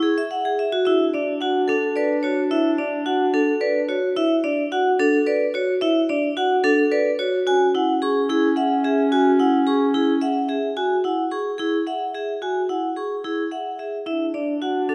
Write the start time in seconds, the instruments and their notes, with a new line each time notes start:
0.03 vibraphone G#4
0.18 vibraphone E5
0.31 vibraphone F#5
0.45 vibraphone G#4
0.59 vibraphone E5
0.72 vibraphone F#4
0.85 clarinet D4, vibraphone E4 E5
1.14 vibraphone D4 D5
1.41 vibraphone F#4 F#5
1.68 vibraphone D4 A4
1.96 vibraphone B4 D5
2.23 vibraphone F#4 C#5
2.51 vibraphone E4 E5
2.78 vibraphone D4 D5
3.06 vibraphone F#4 F#5
3.34 vibraphone D4 A4
3.61 vibraphone B4 D5
3.89 vibraphone F#4 C#5
4.16 vibraphone E4 E5
4.44 vibraphone D4 D5
4.72 vibraphone F#4 F#5
4.99 vibraphone D4 A4
5.27 vibraphone B4 D5
5.54 vibraphone F#4 C#5
5.81 vibraphone E4 E5
6.09 vibraphone D4 D5
6.37 vibraphone F#4 F#5
6.64 vibraphone D4 A4
6.92 vibraphone B4 D5
7.19 vibraphone F#4 C#5
7.46 clarinet C#4, vibraphone F#4 G#5
7.75 vibraphone E4 F#5
8.02 vibraphone G#4 C#6
8.29 vibraphone E4 G#4
8.56 vibraphone E5 F#5
8.84 vibraphone G#4 E5
9.12 vibraphone F#4 G#5
9.39 vibraphone E4 F#5
9.67 vibraphone G#4 C#6
9.94 vibraphone E4 G#4
10.21 vibraphone E5 F#5
10.49 vibraphone G#4 E5
10.77 vibraphone F#4 G#5
11.04 vibraphone E4 F#5
11.31 vibraphone G#4 C#6
11.58 vibraphone E4 G#4
11.87 vibraphone E5 F#5
12.14 vibraphone G#4 E5
12.42 vibraphone F#4 G#5
12.69 vibraphone E4 F#5
12.96 vibraphone G#4 C#6
13.24 vibraphone E4 G#4
13.51 vibraphone E5 F#5
13.79 vibraphone G#4 E5
14.06 clarinet D4, vibraphone E4 E5
14.34 vibraphone D4 D5
14.62 vibraphone F#4 F#5
14.89 vibraphone D4 A4